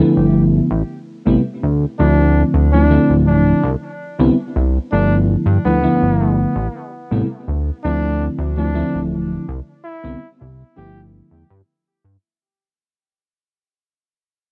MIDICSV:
0, 0, Header, 1, 4, 480
1, 0, Start_track
1, 0, Tempo, 731707
1, 462, Time_signature, 4, 2, 24, 8
1, 9521, End_track
2, 0, Start_track
2, 0, Title_t, "Flugelhorn"
2, 0, Program_c, 0, 56
2, 1308, Note_on_c, 0, 62, 91
2, 1593, Note_off_c, 0, 62, 0
2, 1789, Note_on_c, 0, 62, 94
2, 2074, Note_off_c, 0, 62, 0
2, 2145, Note_on_c, 0, 62, 90
2, 2434, Note_off_c, 0, 62, 0
2, 3229, Note_on_c, 0, 62, 100
2, 3392, Note_off_c, 0, 62, 0
2, 3707, Note_on_c, 0, 59, 96
2, 4187, Note_off_c, 0, 59, 0
2, 5144, Note_on_c, 0, 62, 100
2, 5432, Note_off_c, 0, 62, 0
2, 5625, Note_on_c, 0, 62, 95
2, 5912, Note_off_c, 0, 62, 0
2, 6460, Note_on_c, 0, 64, 92
2, 6751, Note_off_c, 0, 64, 0
2, 7066, Note_on_c, 0, 67, 97
2, 7231, Note_off_c, 0, 67, 0
2, 9521, End_track
3, 0, Start_track
3, 0, Title_t, "FM electric piano"
3, 0, Program_c, 1, 5
3, 0, Note_on_c, 1, 50, 102
3, 0, Note_on_c, 1, 53, 90
3, 0, Note_on_c, 1, 57, 87
3, 0, Note_on_c, 1, 59, 89
3, 0, Note_on_c, 1, 64, 112
3, 446, Note_off_c, 1, 50, 0
3, 448, Note_off_c, 1, 53, 0
3, 448, Note_off_c, 1, 57, 0
3, 450, Note_off_c, 1, 59, 0
3, 451, Note_off_c, 1, 64, 0
3, 824, Note_on_c, 1, 48, 98
3, 827, Note_on_c, 1, 55, 92
3, 828, Note_on_c, 1, 57, 90
3, 831, Note_on_c, 1, 59, 83
3, 833, Note_on_c, 1, 64, 100
3, 923, Note_off_c, 1, 48, 0
3, 925, Note_off_c, 1, 55, 0
3, 925, Note_off_c, 1, 57, 0
3, 927, Note_off_c, 1, 59, 0
3, 928, Note_off_c, 1, 64, 0
3, 1302, Note_on_c, 1, 50, 80
3, 1305, Note_on_c, 1, 53, 69
3, 1307, Note_on_c, 1, 57, 70
3, 1310, Note_on_c, 1, 60, 68
3, 1311, Note_on_c, 1, 64, 84
3, 1755, Note_off_c, 1, 50, 0
3, 1756, Note_off_c, 1, 53, 0
3, 1757, Note_off_c, 1, 57, 0
3, 1759, Note_off_c, 1, 60, 0
3, 1759, Note_off_c, 1, 64, 0
3, 1789, Note_on_c, 1, 50, 85
3, 1790, Note_on_c, 1, 53, 79
3, 1793, Note_on_c, 1, 57, 75
3, 1795, Note_on_c, 1, 60, 77
3, 1796, Note_on_c, 1, 64, 95
3, 1875, Note_off_c, 1, 50, 0
3, 1876, Note_off_c, 1, 53, 0
3, 1877, Note_off_c, 1, 57, 0
3, 1878, Note_off_c, 1, 60, 0
3, 1878, Note_off_c, 1, 64, 0
3, 1898, Note_on_c, 1, 50, 103
3, 1900, Note_on_c, 1, 53, 91
3, 1904, Note_on_c, 1, 57, 93
3, 1906, Note_on_c, 1, 60, 89
3, 1908, Note_on_c, 1, 64, 108
3, 2366, Note_off_c, 1, 50, 0
3, 2367, Note_off_c, 1, 53, 0
3, 2369, Note_off_c, 1, 57, 0
3, 2370, Note_off_c, 1, 60, 0
3, 2371, Note_off_c, 1, 64, 0
3, 2746, Note_on_c, 1, 50, 90
3, 2749, Note_on_c, 1, 55, 89
3, 2751, Note_on_c, 1, 59, 86
3, 2752, Note_on_c, 1, 60, 84
3, 2756, Note_on_c, 1, 64, 111
3, 2844, Note_off_c, 1, 50, 0
3, 2845, Note_off_c, 1, 55, 0
3, 2847, Note_off_c, 1, 59, 0
3, 2847, Note_off_c, 1, 60, 0
3, 2849, Note_off_c, 1, 64, 0
3, 3224, Note_on_c, 1, 50, 76
3, 3227, Note_on_c, 1, 53, 73
3, 3229, Note_on_c, 1, 57, 73
3, 3232, Note_on_c, 1, 59, 68
3, 3235, Note_on_c, 1, 64, 80
3, 3676, Note_off_c, 1, 50, 0
3, 3677, Note_off_c, 1, 53, 0
3, 3678, Note_off_c, 1, 57, 0
3, 3680, Note_off_c, 1, 59, 0
3, 3681, Note_off_c, 1, 64, 0
3, 3705, Note_on_c, 1, 50, 87
3, 3708, Note_on_c, 1, 53, 79
3, 3710, Note_on_c, 1, 57, 78
3, 3713, Note_on_c, 1, 59, 78
3, 3717, Note_on_c, 1, 64, 90
3, 3793, Note_off_c, 1, 50, 0
3, 3795, Note_off_c, 1, 53, 0
3, 3795, Note_off_c, 1, 57, 0
3, 3797, Note_off_c, 1, 59, 0
3, 3799, Note_off_c, 1, 64, 0
3, 3819, Note_on_c, 1, 50, 104
3, 3823, Note_on_c, 1, 53, 97
3, 3825, Note_on_c, 1, 57, 91
3, 3827, Note_on_c, 1, 59, 92
3, 3829, Note_on_c, 1, 64, 113
3, 4287, Note_off_c, 1, 50, 0
3, 4288, Note_off_c, 1, 53, 0
3, 4289, Note_off_c, 1, 57, 0
3, 4290, Note_off_c, 1, 59, 0
3, 4292, Note_off_c, 1, 64, 0
3, 4663, Note_on_c, 1, 48, 98
3, 4664, Note_on_c, 1, 55, 92
3, 4667, Note_on_c, 1, 57, 91
3, 4671, Note_on_c, 1, 59, 85
3, 4672, Note_on_c, 1, 64, 103
3, 4763, Note_off_c, 1, 48, 0
3, 4763, Note_off_c, 1, 55, 0
3, 4765, Note_off_c, 1, 57, 0
3, 4767, Note_off_c, 1, 59, 0
3, 4767, Note_off_c, 1, 64, 0
3, 5143, Note_on_c, 1, 50, 81
3, 5143, Note_on_c, 1, 53, 72
3, 5146, Note_on_c, 1, 57, 71
3, 5149, Note_on_c, 1, 60, 68
3, 5151, Note_on_c, 1, 64, 88
3, 5595, Note_off_c, 1, 50, 0
3, 5595, Note_off_c, 1, 53, 0
3, 5597, Note_off_c, 1, 57, 0
3, 5598, Note_off_c, 1, 60, 0
3, 5599, Note_off_c, 1, 64, 0
3, 5621, Note_on_c, 1, 50, 86
3, 5622, Note_on_c, 1, 53, 80
3, 5626, Note_on_c, 1, 57, 78
3, 5628, Note_on_c, 1, 60, 81
3, 5631, Note_on_c, 1, 64, 94
3, 5711, Note_off_c, 1, 50, 0
3, 5711, Note_off_c, 1, 53, 0
3, 5713, Note_off_c, 1, 57, 0
3, 5714, Note_off_c, 1, 60, 0
3, 5716, Note_off_c, 1, 64, 0
3, 5733, Note_on_c, 1, 50, 101
3, 5735, Note_on_c, 1, 53, 96
3, 5737, Note_on_c, 1, 57, 94
3, 5740, Note_on_c, 1, 60, 92
3, 5742, Note_on_c, 1, 64, 113
3, 6203, Note_off_c, 1, 50, 0
3, 6205, Note_off_c, 1, 53, 0
3, 6206, Note_off_c, 1, 57, 0
3, 6207, Note_off_c, 1, 60, 0
3, 6208, Note_off_c, 1, 64, 0
3, 6581, Note_on_c, 1, 50, 95
3, 6582, Note_on_c, 1, 55, 88
3, 6586, Note_on_c, 1, 59, 92
3, 6588, Note_on_c, 1, 60, 88
3, 6590, Note_on_c, 1, 64, 109
3, 6682, Note_off_c, 1, 50, 0
3, 6682, Note_off_c, 1, 55, 0
3, 6684, Note_off_c, 1, 59, 0
3, 6685, Note_off_c, 1, 60, 0
3, 6686, Note_off_c, 1, 64, 0
3, 7057, Note_on_c, 1, 50, 78
3, 7060, Note_on_c, 1, 53, 70
3, 7061, Note_on_c, 1, 57, 72
3, 7063, Note_on_c, 1, 59, 71
3, 7067, Note_on_c, 1, 64, 86
3, 7512, Note_off_c, 1, 50, 0
3, 7513, Note_off_c, 1, 53, 0
3, 7514, Note_off_c, 1, 57, 0
3, 7515, Note_off_c, 1, 59, 0
3, 7517, Note_off_c, 1, 64, 0
3, 9521, End_track
4, 0, Start_track
4, 0, Title_t, "Analog synth bass"
4, 0, Program_c, 2, 38
4, 112, Note_on_c, 2, 31, 86
4, 397, Note_off_c, 2, 31, 0
4, 465, Note_on_c, 2, 33, 104
4, 543, Note_off_c, 2, 33, 0
4, 831, Note_on_c, 2, 33, 97
4, 902, Note_off_c, 2, 33, 0
4, 1072, Note_on_c, 2, 38, 86
4, 1218, Note_off_c, 2, 38, 0
4, 1311, Note_on_c, 2, 38, 103
4, 1597, Note_off_c, 2, 38, 0
4, 1666, Note_on_c, 2, 38, 95
4, 1956, Note_off_c, 2, 38, 0
4, 2032, Note_on_c, 2, 26, 100
4, 2317, Note_off_c, 2, 26, 0
4, 2384, Note_on_c, 2, 36, 101
4, 2463, Note_off_c, 2, 36, 0
4, 2750, Note_on_c, 2, 36, 95
4, 2821, Note_off_c, 2, 36, 0
4, 2991, Note_on_c, 2, 36, 88
4, 3137, Note_off_c, 2, 36, 0
4, 3231, Note_on_c, 2, 31, 99
4, 3517, Note_off_c, 2, 31, 0
4, 3580, Note_on_c, 2, 43, 99
4, 3661, Note_off_c, 2, 43, 0
4, 3706, Note_on_c, 2, 38, 93
4, 3855, Note_off_c, 2, 38, 0
4, 3949, Note_on_c, 2, 31, 88
4, 4236, Note_off_c, 2, 31, 0
4, 4302, Note_on_c, 2, 33, 99
4, 4382, Note_off_c, 2, 33, 0
4, 4666, Note_on_c, 2, 33, 97
4, 4739, Note_off_c, 2, 33, 0
4, 4907, Note_on_c, 2, 38, 85
4, 5055, Note_off_c, 2, 38, 0
4, 5145, Note_on_c, 2, 38, 98
4, 5434, Note_off_c, 2, 38, 0
4, 5501, Note_on_c, 2, 38, 89
4, 5794, Note_off_c, 2, 38, 0
4, 5868, Note_on_c, 2, 26, 97
4, 6155, Note_off_c, 2, 26, 0
4, 6222, Note_on_c, 2, 36, 108
4, 6302, Note_off_c, 2, 36, 0
4, 6587, Note_on_c, 2, 36, 93
4, 6660, Note_off_c, 2, 36, 0
4, 6829, Note_on_c, 2, 36, 88
4, 6976, Note_off_c, 2, 36, 0
4, 7068, Note_on_c, 2, 31, 104
4, 7355, Note_off_c, 2, 31, 0
4, 7422, Note_on_c, 2, 40, 91
4, 7502, Note_off_c, 2, 40, 0
4, 7547, Note_on_c, 2, 43, 101
4, 7619, Note_off_c, 2, 43, 0
4, 7901, Note_on_c, 2, 43, 101
4, 7982, Note_off_c, 2, 43, 0
4, 9521, End_track
0, 0, End_of_file